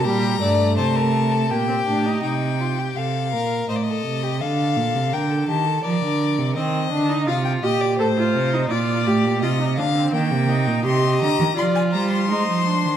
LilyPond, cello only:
\new Staff \with { instrumentName = "Cello" } { \clef bass \time 3/4 \key c \minor \tempo 4 = 83 bes,8 g,8 c4 bes,8 a,8 | c4 c8 bes,8 a,8 c8 | d8 bes,16 c16 d8 ees8 f16 d8 c16 | ees8 d8 c8 bes,8 a,8 c8 |
bes,8 a,16 bes,16 c8 d8 ees16 c8 bes,16 | c8 d16 ees16 f8 g8 aes16 f8 ees16 | }